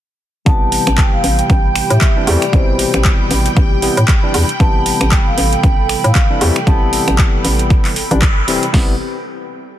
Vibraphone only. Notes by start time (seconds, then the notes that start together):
0.46 A5
0.98 G5
1.13 F5
1.39 G5
1.90 E5
2.27 D5
2.53 C5
4.60 A5
5.12 G5
5.27 F5
5.52 G5
6.04 F5
6.41 G5
6.67 A5